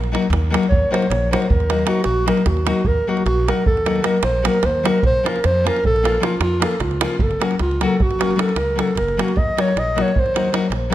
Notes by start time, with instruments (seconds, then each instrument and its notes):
Already playing: upright bass A#1, clarinet A#4
0.04 davul high
0.12 nylon-string guitar F#3 A#3 D#4 F#4, davul high
0.22 davul high
0.30 upright bass D#2, davul high, davul low
0.50 nylon-string guitar F#3 A#3 D#4 F#4, davul high
0.63 davul high
0.69 upright bass D#2, clarinet C#5, davul low
0.91 nylon-string guitar F#3 A#3 D#4 F#4, clarinet C5, davul high
1.02 davul high
1.10 upright bass A#1, clarinet C#5, davul high
1.31 nylon-string guitar F#3 A#3 D#4 F#4, clarinet C5, davul high
1.42 clarinet C5, davul high
1.50 upright bass D#2, clarinet A#4, davul low
1.60 davul high
1.69 nylon-string guitar F#3 A#3 D#4 F#4, davul high
1.79 davul high
1.85 nylon-string guitar F#3 A#3 D#4 F#4, clarinet F#4, davul high
2.04 upright bass A#1, clarinet F#4, davul high
2.26 nylon-string guitar F#3 A#3 D#4 F#4, clarinet A#4, davul high
2.37 davul high
2.46 upright bass D#2, clarinet F#4, davul high, davul low
2.57 davul high
2.65 nylon-string guitar F#3 A#3 D#4 F#4, clarinet F#4, davul high
2.85 upright bass D#2, clarinet A#4, davul low
3.07 nylon-string guitar F#3 A#3 D#4 F#4, clarinet F#4
3.17 davul high
3.25 upright bass A#1, clarinet F#4, davul high
3.47 nylon-string guitar F#3 A#3 D#4 F#4, clarinet A#4, davul high
3.66 upright bass D#2, clarinet A4, davul low
3.77 davul high
3.85 nylon-string guitar F#3 A#3 D#4 F#4, davul high
3.96 davul high
4.02 nylon-string guitar F#3 A#3 D#4 F#4, clarinet A#4, davul high
4.23 upright bass A#1, clarinet C5, davul high
4.42 nylon-string guitar F#3 A#3 D#4 F#4, davul high
4.47 clarinet A#4
4.54 davul high
4.63 upright bass D#2, clarinet C5, davul high, davul low
4.83 nylon-string guitar F#3 A#3 D#4 F#4, davul high
4.87 clarinet A#4
5.03 upright bass A#1, clarinet C5, davul low
5.23 nylon-string guitar F3 A#3 C#4 F4, davul high
5.28 clarinet A#4
5.36 davul high
5.44 upright bass F2, clarinet C5, davul high
5.64 nylon-string guitar F3 A#3 C#4 F4, clarinet A#4, davul high
5.76 davul high
5.84 upright bass A#1, clarinet A4, davul low
5.96 davul high
6.03 nylon-string guitar F3 A#3 C#4 F4, davul high
6.15 davul high
6.20 nylon-string guitar F3 A#3 C#4 F4, davul high
6.24 clarinet F4
6.40 upright bass F2, clarinet F4, davul high
6.60 nylon-string guitar F3 A#3 C#4 F4, davul high
6.65 clarinet A4
6.71 davul high
6.80 upright bass C#2, clarinet F4, davul high, davul low
6.91 davul high
7.00 nylon-string guitar F3 A#3 C#4 F4, clarinet F4, davul high
7.19 upright bass F#1, clarinet A4, davul low
7.31 davul high
7.40 nylon-string guitar F#3 A#3 C#4 F#4, davul high
7.51 davul high
7.59 upright bass C#2, clarinet F4, davul high
7.71 davul high
7.81 nylon-string guitar F#3 A#3 C#4 F#4, clarinet A4, davul high
8.00 upright bass F#1, clarinet F#4, davul low
8.11 davul high
8.19 nylon-string guitar F#3 A#3 C#4 F#4, davul high
8.31 davul high
8.36 nylon-string guitar F#3 A#3 C#4 F#4, davul high
8.40 clarinet A4
8.49 davul high
8.56 upright bass C#2, clarinet A#4, davul high
8.75 nylon-string guitar F#3 A#3 C#4 F#4, davul high
8.80 clarinet A4
8.88 davul high
8.95 upright bass F#1, clarinet A#4, davul high, davul low
9.08 davul high
9.17 nylon-string guitar F#3 A#3 C#4 F#4, clarinet F#4, davul high
9.28 davul high
9.36 upright bass D#2, clarinet D#5, davul low
9.57 nylon-string guitar F#3 A#3 D#4 F#4, clarinet C#5, davul high
9.68 davul high
9.76 upright bass A#1, clarinet D#5, davul high
9.95 nylon-string guitar F#3 A#3 D#4 F#4, davul high
10.02 clarinet C#5
10.08 davul high
10.16 upright bass D#2, clarinet C5, davul low
10.26 davul high
10.34 nylon-string guitar F#3 A#3 D#4 F#4, davul high
10.45 davul high
10.52 nylon-string guitar F#3 A#3 D#4 F#4, davul high
10.70 upright bass A#1, davul high
10.90 nylon-string guitar F#3 A#3 D#4 F#4